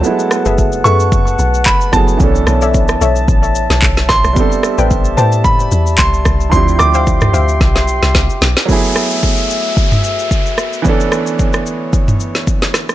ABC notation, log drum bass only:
X:1
M:4/4
L:1/16
Q:"Swing 16ths" 1/4=111
K:F#m
V:1 name="Log drum bass" clef=bass
z3 F,,,3 F,,4 B,,,2 F,,,2 F,,,2 | B,,,2 B,,,4 B,,,2 A,,,3 B,,, B,,,2 A,,, B,,, | z3 A,,,3 A,,4 E,,2 =C,,2 C,,2 | D,,2 D,,4 D,,2 B,,,3 =C,, C,, z B,,, z |
z16 | z16 |]